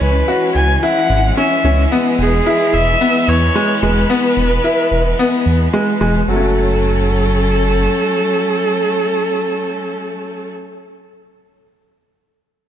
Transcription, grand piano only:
0.28 0.64 F#4 medium
0.83 1.18 E4 loud
1.37 1.55 C#4 medium
1.65 1.82 C#4 medium
1.92 2.28 B3 loud
2.46 2.82 E4 medium
3.01 3.37 B3 loud
3.55 3.73 G#3 medium
3.83 4.01 G#3 medium
4.10 4.46 B3 loud
4.64 5.00 E4 medium
5.19 5.55 B3 loud
5.74 5.91 G#3 loud
6.01 6.19 G#3 medium
6.28 10.50 F#3 medium
6.28 10.54 A3 medium
6.36 10.58 C#4 medium
6.40 10.62 F#4 medium

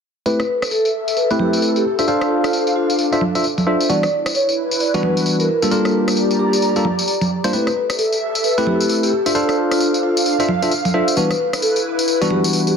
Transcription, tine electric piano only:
0.26 0.40 A3 medium
0.26 0.40 C4 medium
0.26 0.40 E4 medium
0.26 0.40 G4 medium
0.26 0.40 B4 medium
1.31 1.84 A3 medium
1.31 1.84 C4 medium
1.31 1.84 E4 medium
1.31 1.84 G4 medium
1.31 1.84 B4 medium
1.99 2.06 D4 medium
1.99 2.06 F4 medium
1.99 2.06 A4 medium
1.99 2.06 C5 medium
1.99 2.06 E5 medium
2.08 3.09 D4 medium
2.08 3.09 F4 medium
2.08 3.09 A4 medium
2.08 3.09 C5 medium
2.08 3.09 F5 medium
3.12 3.22 D4 medium
3.12 3.22 F4 medium
3.12 3.22 A4 medium
3.12 3.22 C5 medium
3.12 3.22 E5 medium
3.35 3.45 D4 medium
3.35 3.45 F4 medium
3.35 3.45 A4 medium
3.35 3.45 C5 medium
3.35 3.45 E5 medium
3.67 3.87 D4 medium
3.67 3.87 F4 medium
3.67 3.87 A4 medium
3.67 3.87 C5 medium
3.67 3.87 E5 medium
3.89 4.04 E3 medium
3.89 4.04 G3 medium
3.89 4.04 B3 medium
3.89 4.04 D4 medium
3.89 4.04 F#4 medium
4.94 5.48 E3 medium
4.94 5.48 G3 medium
4.94 5.48 B3 medium
4.94 5.48 D4 medium
4.94 5.48 F#4 medium
5.62 5.70 G3 medium
5.62 5.70 A#3 medium
5.62 5.70 D4 medium
5.62 5.70 F4 medium
5.62 5.70 A4 medium
5.71 6.73 G3 medium
5.71 6.73 A#3 medium
5.71 6.73 D4 medium
5.71 6.73 F4 medium
5.71 6.73 A#4 medium
6.76 6.85 G3 medium
6.76 6.85 A#3 medium
6.76 6.85 D4 medium
6.76 6.85 F4 medium
6.76 6.85 A4 medium
7.44 7.52 G3 medium
7.44 7.52 A#3 medium
7.44 7.52 D4 medium
7.44 7.52 F4 medium
7.44 7.52 C5 loud
7.53 7.67 A3 medium
7.53 7.67 C4 medium
7.53 7.67 E4 medium
7.53 7.67 G4 medium
7.53 7.67 B4 medium
8.58 9.11 A3 medium
8.58 9.11 C4 medium
8.58 9.11 E4 medium
8.58 9.11 G4 medium
8.58 9.11 B4 medium
9.26 9.34 D4 medium
9.26 9.34 F4 medium
9.26 9.34 A4 medium
9.26 9.34 C5 medium
9.26 9.34 E5 medium
9.35 10.36 D4 medium
9.35 10.36 F4 medium
9.35 10.36 A4 medium
9.35 10.36 C5 medium
9.35 10.36 F5 medium
10.40 10.49 D4 medium
10.40 10.49 F4 medium
10.40 10.49 A4 medium
10.40 10.49 C5 medium
10.40 10.49 E5 medium
10.62 10.72 D4 medium
10.62 10.72 F4 medium
10.62 10.72 A4 medium
10.62 10.72 C5 medium
10.62 10.72 E5 medium
10.94 11.15 D4 medium
10.94 11.15 F4 medium
10.94 11.15 A4 medium
10.94 11.15 C5 medium
10.94 11.15 E5 medium
11.17 11.31 E3 medium
11.17 11.31 G3 medium
11.17 11.31 B3 medium
11.17 11.31 D4 medium
11.17 11.31 F#4 medium
12.22 12.75 E3 medium
12.22 12.75 G3 medium
12.22 12.75 B3 medium
12.22 12.75 D4 medium
12.22 12.75 F#4 loud

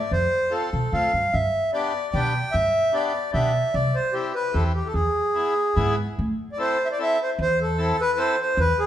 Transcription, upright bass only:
0.11 0.25 F2 medium
0.73 0.90 B2 medium
0.93 1.12 A2 medium
1.13 1.31 G2 medium
1.34 1.47 G2 medium
2.14 2.40 B2 medium
2.54 2.68 G2 medium
3.34 3.60 B2 medium
3.74 3.88 C2 medium
4.54 4.80 E2 medium
4.94 5.08 E2 medium
5.77 6.03 G#2 medium
6.19 6.32 A2 medium
7.39 7.90 E2 medium
8.57 8.71 E2 medium

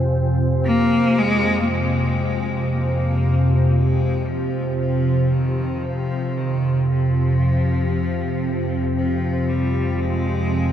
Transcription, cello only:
0.65 1.20 A#3 loud
1.19 1.62 G#3 loud
1.62 1.70 A#3 medium
1.68 2.74 G#3 loud
2.73 3.70 A#3 medium
3.70 3.77 A#3 medium
3.75 4.30 G#3 medium
4.28 4.79 F3 medium
4.80 5.34 F3 medium
5.33 5.86 D#3 medium
5.85 6.39 F3 medium
6.38 6.88 D#3 medium
6.89 8.91 F3 medium
8.96 9.51 F3 medium
9.49 10.02 G3 medium
10.00 10.72 G#3 medium

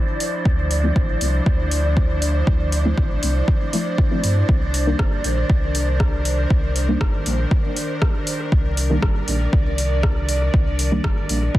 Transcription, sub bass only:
0.45 0.91 D2 loud
0.96 1.15 A1 loud
1.21 1.40 C2 loud
1.46 2.42 D2 medium
2.47 2.93 D2 loud
2.98 3.17 A1 loud
3.23 3.42 C2 loud
4.24 4.43 G2 medium
4.49 4.95 C2 medium
4.99 5.19 G1 loud
5.24 5.44 A#1 loud
5.50 6.46 C2 medium
6.50 6.96 C2 loud
7.01 7.20 G1 loud
7.26 7.46 A#1 loud
8.52 8.98 C2 loud
9.03 9.22 G1 loud
9.28 9.47 A#1 loud
9.53 10.49 C2 medium
10.54 11.00 C2 loud
11.04 11.24 G1 loud
11.29 11.49 A#1 loud

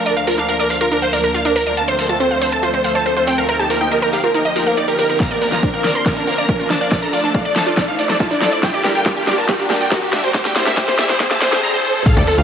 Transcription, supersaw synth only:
0.06 0.14 A#4 medium
0.17 0.25 F5 medium
0.27 0.35 A#4 medium
0.38 0.46 F5 medium
0.49 0.57 A#4 medium
0.59 0.68 A#4 medium
0.70 0.78 F5 medium
0.81 0.89 A#4 medium
0.92 1.00 A#4 medium
1.02 1.10 C5 medium
1.13 1.21 A#4 medium
1.24 1.32 A#4 medium
1.34 1.42 F5 medium
1.45 1.53 A#4 medium
1.56 1.64 A#4 medium
1.66 1.75 A#4 medium
1.77 1.85 A5 loud
1.88 1.96 C5 medium
1.99 2.07 C5 medium
2.09 2.17 A5 loud
2.20 2.28 C5 medium
2.31 2.39 C5 medium
2.41 2.50 C5 medium
2.52 2.60 A5 medium
2.63 2.71 C5 medium
2.74 2.82 C5 medium
2.84 2.93 C5 medium
2.95 3.03 A5 medium
3.06 3.14 C5 medium
3.17 3.25 C5 medium
3.27 3.35 G5 medium
3.38 3.46 A#4 medium
3.49 3.57 A#4 medium
3.59 3.67 A5 medium
3.70 3.78 A#4 medium
3.81 3.89 G5 medium
3.92 4.00 A#4 medium
4.02 4.10 A#4 medium
4.13 4.21 F5 medium
4.24 4.32 A#4 medium
4.34 4.42 A#4 medium
4.45 4.53 D#5 medium
4.56 4.64 A#4 medium
4.67 4.75 A#4 medium
4.77 4.85 D5 medium
4.88 4.96 A#4 medium
4.99 5.07 A#4 medium
5.09 5.18 A#4 medium
5.20 5.28 A#5 loud
5.31 5.39 A#4 medium
5.42 5.50 A#4 medium
5.52 5.60 A#5 loud
5.63 5.71 A#4 medium
5.74 5.82 A#4 medium
5.84 5.93 A#4 medium
5.95 6.03 C6 medium
6.06 6.14 A#4 medium
6.17 6.25 A#4 medium
6.27 6.35 A#4 medium
6.38 6.46 A#5 medium
6.49 6.57 A#4 medium
6.60 6.68 A#4 medium
6.70 6.78 A5 medium
6.81 6.89 D5 medium
6.92 7.00 D5 medium
7.02 7.10 A#5 medium
7.13 7.21 D5 medium
7.24 7.32 A5 loud
7.34 7.43 D5 medium
7.45 7.53 D5 medium
7.56 7.64 A5 loud
7.67 7.75 D5 medium
7.77 7.85 D5 medium
7.88 7.96 F5 medium
7.99 8.07 D5 medium
8.09 8.17 D5 medium
8.20 8.28 A5 medium
8.31 8.39 D5 medium
8.42 8.50 D5 medium
8.52 8.60 D5 medium
8.63 8.71 G5 loud
8.74 8.82 G4 medium
8.84 8.93 G4 medium
8.95 9.03 G5 loud
9.06 9.14 G4 medium
9.17 9.25 G4 medium
9.27 9.35 G4 medium
9.38 9.46 A5 medium
9.49 9.57 G4 medium
9.59 9.67 G4 medium
9.70 9.78 G4 medium
9.81 9.89 G5 loud
9.91 10.00 G4 medium
10.02 10.10 G4 medium
10.13 10.21 E5 loud
10.24 10.32 C5 medium
10.34 10.43 C5 medium
10.45 10.53 G5 medium
10.56 10.64 C5 medium
10.66 10.75 E5 loud
10.77 10.85 C5 medium
10.88 10.96 C5 medium
10.99 11.07 E5 medium
11.09 11.17 C5 medium
11.31 11.39 A5 medium
11.42 11.50 C5 medium
11.52 11.60 C5 medium
11.63 11.71 A#5 loud
11.74 11.82 C5 medium
11.85 11.93 C5 medium
11.95 12.03 C5 medium
12.06 12.14 F5 loud
12.17 12.25 A4 medium
12.27 12.35 A4 medium
12.38 12.43 F5 loud

